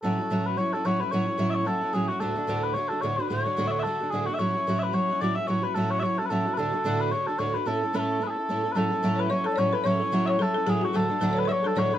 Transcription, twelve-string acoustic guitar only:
X:1
M:4/4
L:1/8
Q:"Swing" 1/4=220
K:A
V:1 name="Twelve-string acoustic guitar"
[A,,F,CEF] [CEF] [A,,F,CEF]2 [F,CEF] [CEF] [A,,F,CEF] [CEF] | [A,,F,CEF] [CEF] [A,,F,CEF]2 [F,CEF] [CEF] [A,,F,CEF] [CEF] | [D,,A,,D,A,DF] [D,A,DF] [D,,A,,D,A,DF]2 [D,A,DF] [D,A,DF] [D,,A,,D,A,DF] [D,A,DF] | [D,,A,,D,A,DF] [D,A,DF] [D,,A,,D,A,DF]2 [D,A,DF] [D,A,DF] [D,,A,,D,A,DF] [D,A,DF] |
[A,,F,CEF] [CEF] [A,,F,CEF]2 [F,CEF] [CEF] [A,,F,CEF] [CEF] | [A,,F,CEF] [CEF] [A,,F,CEF]2 [F,CEF] [CEF] [A,,F,CEF] [CEF] | [D,,A,,D,A,DF] [D,A,DF] [D,,A,,D,A,DF]2 [D,A,DF] [D,A,DF] [D,,A,,D,A,DF] [D,A,DF] | [A,,A,CEA] [CEA] [A,,A,CEA]2 [A,CEA] [CEA] [A,,A,CEA] [CEA] |
[A,,F,CEA] [CEA] [A,,F,CEA]2 [F,CEA] [CEA] [A,,F,CEA] [CEA] | [A,,F,CEA] [CEA] [A,,F,CEA]2 [F,CEA] [CEA] [A,,F,CEA] [CEA] | [D,,A,,F,A,DA] [F,A,DA] [D,,A,,F,A,DA]2 [F,A,DA] [F,A,DA] [D,,A,,F,A,DA] [F,A,DA] |]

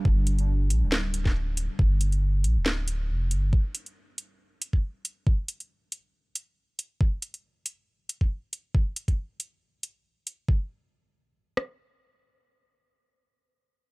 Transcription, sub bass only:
X:1
M:4/4
L:1/16
Q:"Swing 16ths" 1/4=138
K:Gm
V:1 name="Sub bass" clef=bass
G,,,6 B,,, D,,,8 z | G,,,6 B,,, D,,,4- D,,, F,,,2 G,,,2 | z16 | z16 |
z16 | z16 | z16 | z16 |]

